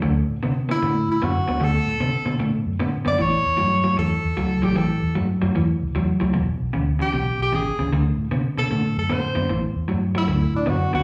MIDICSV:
0, 0, Header, 1, 4, 480
1, 0, Start_track
1, 0, Tempo, 394218
1, 43, Time_signature, 4, 2, 24, 8
1, 13433, End_track
2, 0, Start_track
2, 0, Title_t, "Tenor saxophone"
2, 0, Program_c, 0, 66
2, 861, Note_on_c, 0, 64, 81
2, 1296, Note_off_c, 0, 64, 0
2, 1348, Note_on_c, 0, 64, 79
2, 1510, Note_on_c, 0, 66, 81
2, 1528, Note_off_c, 0, 64, 0
2, 1989, Note_on_c, 0, 69, 105
2, 2008, Note_off_c, 0, 66, 0
2, 2935, Note_off_c, 0, 69, 0
2, 3741, Note_on_c, 0, 74, 99
2, 3906, Note_on_c, 0, 73, 107
2, 3924, Note_off_c, 0, 74, 0
2, 4847, Note_off_c, 0, 73, 0
2, 4854, Note_on_c, 0, 69, 83
2, 5650, Note_on_c, 0, 67, 77
2, 5668, Note_off_c, 0, 69, 0
2, 5804, Note_on_c, 0, 69, 84
2, 5822, Note_off_c, 0, 67, 0
2, 6283, Note_off_c, 0, 69, 0
2, 8545, Note_on_c, 0, 67, 82
2, 8980, Note_off_c, 0, 67, 0
2, 9034, Note_on_c, 0, 67, 96
2, 9186, Note_on_c, 0, 68, 84
2, 9205, Note_off_c, 0, 67, 0
2, 9655, Note_off_c, 0, 68, 0
2, 10450, Note_on_c, 0, 69, 83
2, 10892, Note_off_c, 0, 69, 0
2, 10937, Note_on_c, 0, 69, 82
2, 11109, Note_on_c, 0, 72, 73
2, 11128, Note_off_c, 0, 69, 0
2, 11576, Note_off_c, 0, 72, 0
2, 12388, Note_on_c, 0, 64, 82
2, 12821, Note_off_c, 0, 64, 0
2, 12858, Note_on_c, 0, 62, 82
2, 13011, Note_on_c, 0, 66, 76
2, 13029, Note_off_c, 0, 62, 0
2, 13315, Note_off_c, 0, 66, 0
2, 13322, Note_on_c, 0, 66, 90
2, 13433, Note_off_c, 0, 66, 0
2, 13433, End_track
3, 0, Start_track
3, 0, Title_t, "Clean electric guitar"
3, 0, Program_c, 1, 27
3, 25, Note_on_c, 1, 50, 79
3, 27, Note_on_c, 1, 57, 84
3, 481, Note_off_c, 1, 50, 0
3, 482, Note_off_c, 1, 57, 0
3, 519, Note_on_c, 1, 50, 75
3, 528, Note_on_c, 1, 59, 75
3, 805, Note_off_c, 1, 50, 0
3, 809, Note_off_c, 1, 59, 0
3, 839, Note_on_c, 1, 50, 70
3, 840, Note_on_c, 1, 59, 65
3, 986, Note_off_c, 1, 50, 0
3, 986, Note_off_c, 1, 59, 0
3, 1004, Note_on_c, 1, 50, 63
3, 1006, Note_on_c, 1, 57, 77
3, 1450, Note_off_c, 1, 50, 0
3, 1451, Note_off_c, 1, 57, 0
3, 1483, Note_on_c, 1, 50, 70
3, 1489, Note_on_c, 1, 59, 81
3, 1767, Note_off_c, 1, 50, 0
3, 1769, Note_off_c, 1, 59, 0
3, 1798, Note_on_c, 1, 50, 75
3, 1807, Note_on_c, 1, 59, 77
3, 1931, Note_off_c, 1, 50, 0
3, 1946, Note_on_c, 1, 50, 70
3, 1949, Note_off_c, 1, 59, 0
3, 1957, Note_on_c, 1, 57, 75
3, 2401, Note_off_c, 1, 50, 0
3, 2406, Note_off_c, 1, 57, 0
3, 2439, Note_on_c, 1, 50, 70
3, 2444, Note_on_c, 1, 59, 75
3, 2725, Note_off_c, 1, 50, 0
3, 2727, Note_off_c, 1, 59, 0
3, 2747, Note_on_c, 1, 50, 66
3, 2752, Note_on_c, 1, 59, 74
3, 2899, Note_off_c, 1, 50, 0
3, 2902, Note_off_c, 1, 59, 0
3, 2914, Note_on_c, 1, 50, 55
3, 2920, Note_on_c, 1, 57, 71
3, 3365, Note_off_c, 1, 50, 0
3, 3368, Note_off_c, 1, 57, 0
3, 3404, Note_on_c, 1, 50, 75
3, 3410, Note_on_c, 1, 59, 90
3, 3687, Note_off_c, 1, 50, 0
3, 3690, Note_off_c, 1, 59, 0
3, 3711, Note_on_c, 1, 50, 74
3, 3721, Note_on_c, 1, 59, 85
3, 3862, Note_off_c, 1, 50, 0
3, 3866, Note_off_c, 1, 59, 0
3, 3873, Note_on_c, 1, 45, 67
3, 3881, Note_on_c, 1, 52, 82
3, 4325, Note_off_c, 1, 45, 0
3, 4328, Note_off_c, 1, 52, 0
3, 4347, Note_on_c, 1, 45, 81
3, 4355, Note_on_c, 1, 54, 95
3, 4639, Note_off_c, 1, 45, 0
3, 4643, Note_off_c, 1, 54, 0
3, 4673, Note_on_c, 1, 45, 69
3, 4676, Note_on_c, 1, 54, 71
3, 4819, Note_off_c, 1, 45, 0
3, 4824, Note_off_c, 1, 54, 0
3, 4834, Note_on_c, 1, 45, 64
3, 4843, Note_on_c, 1, 52, 65
3, 5285, Note_off_c, 1, 45, 0
3, 5290, Note_off_c, 1, 52, 0
3, 5320, Note_on_c, 1, 45, 65
3, 5323, Note_on_c, 1, 54, 95
3, 5605, Note_off_c, 1, 45, 0
3, 5607, Note_off_c, 1, 54, 0
3, 5627, Note_on_c, 1, 45, 68
3, 5639, Note_on_c, 1, 54, 74
3, 5775, Note_off_c, 1, 45, 0
3, 5786, Note_off_c, 1, 54, 0
3, 5790, Note_on_c, 1, 45, 63
3, 5795, Note_on_c, 1, 52, 73
3, 6243, Note_off_c, 1, 45, 0
3, 6246, Note_off_c, 1, 52, 0
3, 6275, Note_on_c, 1, 45, 68
3, 6275, Note_on_c, 1, 54, 88
3, 6563, Note_off_c, 1, 54, 0
3, 6564, Note_off_c, 1, 45, 0
3, 6594, Note_on_c, 1, 45, 73
3, 6596, Note_on_c, 1, 54, 74
3, 6744, Note_off_c, 1, 45, 0
3, 6745, Note_off_c, 1, 54, 0
3, 6758, Note_on_c, 1, 45, 59
3, 6765, Note_on_c, 1, 52, 77
3, 7208, Note_off_c, 1, 45, 0
3, 7211, Note_off_c, 1, 52, 0
3, 7244, Note_on_c, 1, 45, 65
3, 7252, Note_on_c, 1, 54, 79
3, 7528, Note_off_c, 1, 45, 0
3, 7532, Note_off_c, 1, 54, 0
3, 7550, Note_on_c, 1, 45, 80
3, 7562, Note_on_c, 1, 54, 78
3, 7702, Note_off_c, 1, 45, 0
3, 7708, Note_off_c, 1, 54, 0
3, 7714, Note_on_c, 1, 40, 73
3, 7717, Note_on_c, 1, 47, 77
3, 8166, Note_off_c, 1, 40, 0
3, 8168, Note_off_c, 1, 47, 0
3, 8197, Note_on_c, 1, 40, 74
3, 8202, Note_on_c, 1, 49, 74
3, 8485, Note_off_c, 1, 40, 0
3, 8488, Note_off_c, 1, 49, 0
3, 8513, Note_on_c, 1, 40, 65
3, 8526, Note_on_c, 1, 49, 72
3, 8664, Note_off_c, 1, 40, 0
3, 8671, Note_off_c, 1, 49, 0
3, 8676, Note_on_c, 1, 40, 63
3, 8686, Note_on_c, 1, 47, 72
3, 9127, Note_off_c, 1, 40, 0
3, 9132, Note_off_c, 1, 47, 0
3, 9162, Note_on_c, 1, 40, 79
3, 9169, Note_on_c, 1, 49, 74
3, 9447, Note_off_c, 1, 40, 0
3, 9451, Note_off_c, 1, 49, 0
3, 9484, Note_on_c, 1, 40, 69
3, 9486, Note_on_c, 1, 49, 72
3, 9630, Note_off_c, 1, 40, 0
3, 9630, Note_off_c, 1, 49, 0
3, 9650, Note_on_c, 1, 50, 72
3, 9660, Note_on_c, 1, 57, 80
3, 10094, Note_off_c, 1, 50, 0
3, 10099, Note_off_c, 1, 57, 0
3, 10122, Note_on_c, 1, 50, 78
3, 10127, Note_on_c, 1, 59, 70
3, 10407, Note_off_c, 1, 50, 0
3, 10410, Note_off_c, 1, 59, 0
3, 10442, Note_on_c, 1, 50, 59
3, 10450, Note_on_c, 1, 59, 66
3, 10588, Note_off_c, 1, 50, 0
3, 10593, Note_off_c, 1, 59, 0
3, 10601, Note_on_c, 1, 50, 61
3, 10609, Note_on_c, 1, 57, 71
3, 11050, Note_off_c, 1, 50, 0
3, 11053, Note_off_c, 1, 57, 0
3, 11074, Note_on_c, 1, 50, 82
3, 11078, Note_on_c, 1, 59, 91
3, 11363, Note_off_c, 1, 50, 0
3, 11365, Note_off_c, 1, 59, 0
3, 11386, Note_on_c, 1, 50, 81
3, 11396, Note_on_c, 1, 59, 80
3, 11540, Note_off_c, 1, 50, 0
3, 11545, Note_off_c, 1, 59, 0
3, 11560, Note_on_c, 1, 45, 74
3, 11569, Note_on_c, 1, 52, 82
3, 12009, Note_off_c, 1, 45, 0
3, 12013, Note_off_c, 1, 52, 0
3, 12031, Note_on_c, 1, 45, 77
3, 12042, Note_on_c, 1, 54, 75
3, 12322, Note_off_c, 1, 45, 0
3, 12327, Note_off_c, 1, 54, 0
3, 12356, Note_on_c, 1, 45, 70
3, 12359, Note_on_c, 1, 54, 81
3, 12505, Note_off_c, 1, 45, 0
3, 12506, Note_off_c, 1, 54, 0
3, 12513, Note_on_c, 1, 50, 62
3, 12519, Note_on_c, 1, 57, 77
3, 12965, Note_off_c, 1, 50, 0
3, 12968, Note_off_c, 1, 57, 0
3, 12979, Note_on_c, 1, 50, 74
3, 12988, Note_on_c, 1, 59, 93
3, 13275, Note_off_c, 1, 50, 0
3, 13280, Note_off_c, 1, 59, 0
3, 13309, Note_on_c, 1, 50, 69
3, 13315, Note_on_c, 1, 59, 76
3, 13433, Note_off_c, 1, 50, 0
3, 13433, Note_off_c, 1, 59, 0
3, 13433, End_track
4, 0, Start_track
4, 0, Title_t, "Fingered electric bass"
4, 0, Program_c, 2, 33
4, 44, Note_on_c, 2, 38, 90
4, 240, Note_off_c, 2, 38, 0
4, 362, Note_on_c, 2, 45, 73
4, 462, Note_off_c, 2, 45, 0
4, 525, Note_on_c, 2, 48, 74
4, 822, Note_off_c, 2, 48, 0
4, 1010, Note_on_c, 2, 45, 85
4, 1203, Note_off_c, 2, 45, 0
4, 1322, Note_on_c, 2, 45, 72
4, 1422, Note_off_c, 2, 45, 0
4, 1491, Note_on_c, 2, 42, 73
4, 1684, Note_off_c, 2, 42, 0
4, 1803, Note_on_c, 2, 38, 73
4, 1903, Note_off_c, 2, 38, 0
4, 1965, Note_on_c, 2, 38, 83
4, 2160, Note_off_c, 2, 38, 0
4, 2274, Note_on_c, 2, 45, 77
4, 2377, Note_off_c, 2, 45, 0
4, 2436, Note_on_c, 2, 48, 82
4, 2634, Note_off_c, 2, 48, 0
4, 2748, Note_on_c, 2, 47, 79
4, 2853, Note_off_c, 2, 47, 0
4, 2915, Note_on_c, 2, 45, 75
4, 3113, Note_off_c, 2, 45, 0
4, 3236, Note_on_c, 2, 42, 72
4, 3338, Note_off_c, 2, 42, 0
4, 3397, Note_on_c, 2, 45, 70
4, 3595, Note_off_c, 2, 45, 0
4, 3721, Note_on_c, 2, 42, 71
4, 3821, Note_off_c, 2, 42, 0
4, 3884, Note_on_c, 2, 33, 92
4, 4080, Note_off_c, 2, 33, 0
4, 4200, Note_on_c, 2, 40, 73
4, 4301, Note_off_c, 2, 40, 0
4, 4357, Note_on_c, 2, 43, 83
4, 4656, Note_off_c, 2, 43, 0
4, 4839, Note_on_c, 2, 40, 78
4, 5037, Note_off_c, 2, 40, 0
4, 5161, Note_on_c, 2, 40, 74
4, 5262, Note_off_c, 2, 40, 0
4, 5327, Note_on_c, 2, 37, 82
4, 5522, Note_off_c, 2, 37, 0
4, 5639, Note_on_c, 2, 33, 82
4, 5740, Note_off_c, 2, 33, 0
4, 5796, Note_on_c, 2, 33, 87
4, 5994, Note_off_c, 2, 33, 0
4, 6118, Note_on_c, 2, 40, 69
4, 6220, Note_off_c, 2, 40, 0
4, 6277, Note_on_c, 2, 43, 82
4, 6476, Note_off_c, 2, 43, 0
4, 6599, Note_on_c, 2, 42, 77
4, 6701, Note_off_c, 2, 42, 0
4, 6767, Note_on_c, 2, 40, 73
4, 6962, Note_off_c, 2, 40, 0
4, 7085, Note_on_c, 2, 37, 72
4, 7185, Note_off_c, 2, 37, 0
4, 7241, Note_on_c, 2, 40, 79
4, 7438, Note_off_c, 2, 40, 0
4, 7559, Note_on_c, 2, 37, 71
4, 7727, Note_on_c, 2, 28, 83
4, 7745, Note_off_c, 2, 37, 0
4, 7922, Note_off_c, 2, 28, 0
4, 8045, Note_on_c, 2, 35, 69
4, 8145, Note_off_c, 2, 35, 0
4, 8218, Note_on_c, 2, 38, 78
4, 8512, Note_off_c, 2, 38, 0
4, 8687, Note_on_c, 2, 35, 76
4, 8882, Note_off_c, 2, 35, 0
4, 8997, Note_on_c, 2, 35, 82
4, 9100, Note_off_c, 2, 35, 0
4, 9161, Note_on_c, 2, 32, 72
4, 9358, Note_off_c, 2, 32, 0
4, 9480, Note_on_c, 2, 37, 76
4, 9581, Note_off_c, 2, 37, 0
4, 9636, Note_on_c, 2, 38, 84
4, 9835, Note_off_c, 2, 38, 0
4, 9960, Note_on_c, 2, 45, 75
4, 10062, Note_off_c, 2, 45, 0
4, 10122, Note_on_c, 2, 48, 83
4, 10319, Note_off_c, 2, 48, 0
4, 10439, Note_on_c, 2, 47, 86
4, 10541, Note_off_c, 2, 47, 0
4, 10604, Note_on_c, 2, 45, 83
4, 10800, Note_off_c, 2, 45, 0
4, 10919, Note_on_c, 2, 42, 74
4, 11021, Note_off_c, 2, 42, 0
4, 11086, Note_on_c, 2, 45, 79
4, 11282, Note_off_c, 2, 45, 0
4, 11393, Note_on_c, 2, 42, 72
4, 11497, Note_off_c, 2, 42, 0
4, 11559, Note_on_c, 2, 33, 84
4, 11757, Note_off_c, 2, 33, 0
4, 11873, Note_on_c, 2, 40, 82
4, 11976, Note_off_c, 2, 40, 0
4, 12032, Note_on_c, 2, 43, 78
4, 12333, Note_off_c, 2, 43, 0
4, 12512, Note_on_c, 2, 38, 86
4, 12712, Note_off_c, 2, 38, 0
4, 12834, Note_on_c, 2, 45, 81
4, 12937, Note_off_c, 2, 45, 0
4, 13000, Note_on_c, 2, 42, 69
4, 13197, Note_off_c, 2, 42, 0
4, 13317, Note_on_c, 2, 38, 84
4, 13419, Note_off_c, 2, 38, 0
4, 13433, End_track
0, 0, End_of_file